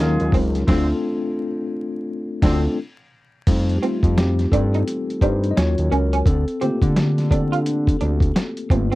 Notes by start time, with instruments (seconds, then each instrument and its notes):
Already playing: tine electric piano F#3, horn section G#3 F4
0.00 analog synth bass D#2, tine electric piano C#4 D#4 F4 A#4, horn section G#4
0.20 analog synth bass D#2, closed hi-hat
0.32 analog synth bass C#2, clean electric guitar C4, kick, open hi-hat
0.55 snare, closed hi-hat
0.67 analog synth bass D2, horn section D3 C4, tine electric piano A3 C4 D4 F4, kick, snare, crash
0.72 tine electric piano A4
2.42 analog synth bass D2, horn section D3 C4, tine electric piano A3 C4 D4 F4, kick, snare, crash
2.46 tine electric piano A4
3.47 analog synth bass F2, tine electric piano G3 A3 D#4, kick, closed hi-hat, crash
3.69 closed hi-hat
3.77 tine electric piano G4
3.82 tine electric piano A3 F4, clean electric guitar C4, closed hi-hat
4.03 analog synth bass F2, kick, closed hi-hat
4.18 tine electric piano C4 G4, muted clean electric guitar stroke, snare, closed hi-hat
4.39 snare, closed hi-hat
4.52 analog synth bass G2, tine electric piano C4 A4, clean electric guitar D4, kick, closed hi-hat
4.74 clean electric guitar D#4, closed hi-hat
4.88 closed hi-hat
5.10 closed hi-hat
5.21 analog synth bass G2, clean electric guitar D4, tine electric piano D#4 C5, kick, closed hi-hat
5.44 closed hi-hat
5.51 tine electric piano D#5
5.57 analog synth bass D#2, tine electric piano F#3 C#4 F4 F#4 C#5, muted clean electric guitar stroke, snare, closed hi-hat
5.78 analog synth bass D#2, closed hi-hat
5.91 analog synth bass C#2, clean electric guitar C#4, tine electric piano C#4 A#4, closed hi-hat
6.13 clean electric guitar C#4, closed hi-hat
6.26 analog synth bass D2, tine electric piano C4 A4, kick, closed hi-hat
6.48 closed hi-hat
6.61 analog synth bass D3, tine electric piano A3 A#3 C4 F4 G4, clean electric guitar C4, closed hi-hat
6.82 analog synth bass D3, kick, closed hi-hat
6.96 muted clean electric guitar stroke, snare, closed hi-hat
7.18 snare, closed hi-hat
7.31 tine electric piano C4 A4, clean electric guitar D4, kick, closed hi-hat
7.52 clean electric guitar F4, closed hi-hat
7.66 closed hi-hat
7.87 kick, closed hi-hat
8.01 analog synth bass D2, clean electric guitar D4, closed hi-hat
8.20 kick, closed hi-hat
8.36 muted clean electric guitar stroke, snare, closed hi-hat
8.57 closed hi-hat
8.70 analog synth bass G1, tine electric piano A3 A#3 F4, clean electric guitar C4, kick, closed hi-hat
8.92 clean electric guitar C4